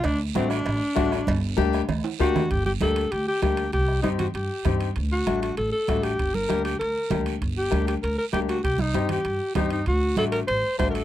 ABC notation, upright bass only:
X:1
M:4/4
L:1/8
Q:1/4=195
K:Gm
V:1 name="Upright bass" clef=bass
D,,2 A,,,2 A,,, z A,,,2 | G,,,2 D,,2 D,, z D,,2 | G,,,2 D,,2 D,, z D,,2 | C,,2 G,,2 G,, z G,,2 |
D,,2 A,,,2 A,,, z A,,,2 | G,,,2 D,,2 D,, z D,,2 | G,,,2 D,,2 D,, z D,,2 | C,,2 G,,2 G,, z G,,2 |
D,,2 A,,,2 A,,, z A,,,2 |]